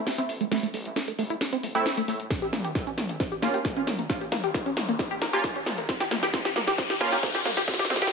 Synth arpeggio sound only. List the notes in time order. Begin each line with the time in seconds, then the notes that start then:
0.18 C4
0.41 A3
0.51 A3
0.63 A3
0.74 A3
0.96 A3
1.08 A3
1.19 A3
1.30 E4
1.53 C4
1.63 A3
1.75 A3
1.86 E4
1.97 A3
2.08 A3
2.31 C4
2.42 G4
2.53 A#3
2.65 G4
2.87 C#4
3.09 A#3
3.20 C4
3.32 G4
3.43 A#3
3.54 G4
3.77 C#4
3.99 A#3
4.10 C4
4.21 G4
4.32 A#3
4.44 G4
4.66 C#4
4.89 A#3
4.99 C4
5.11 G4
5.22 A#3
5.33 G4
5.56 C#4
5.78 A#3
5.89 C4
6.01 G4
6.11 A#3
6.23 G4
6.34 C4
6.45 G4
6.56 A#3
6.68 G4
6.78 C4
6.90 G4
7.01 A#3
7.12 G4
7.23 C4
7.35 G4
7.46 A#3
7.57 G4
7.68 C4
7.80 G4
7.90 C4
8.02 G4